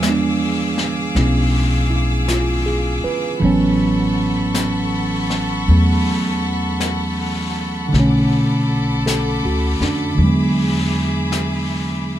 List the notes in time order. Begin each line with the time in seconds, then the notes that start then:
Already playing: E2 F3 G#4 B4 D5 F5 G#5 D6 E6
0.02 G#3 B3, brush sweep, snare, hi-hat pedal
0.10 D4
0.78 snare
1.15 B1 B3 C#4 E4, brush sweep, snare
1.90 E4
2.28 F4, brush sweep, snare, hi-hat pedal
2.66 G#4
3.04 B4, muted upright bass stroke
3.40 A1 E3 F#3 B3 A4 F#5 B5 C#6, brush sweep
3.45 C#4
4.54 brush sweep, snare, hi-hat pedal
5.30 snare
5.67 E2 F#3 A3, brush sweep
5.71 B3
6.80 brush sweep, snare, hi-hat pedal
7.88 D3
7.93 B1 A3 A4 B5 D6, brush sweep, snare
7.99 C#4
9.06 A4, brush sweep, snare, hi-hat pedal
9.43 D2 F#4
9.80 F2 D4, snare
10.15 E2 D3
10.19 F#3 G#3 G#4 E5, brush sweep
10.26 B3
11.32 brush sweep, snare, hi-hat pedal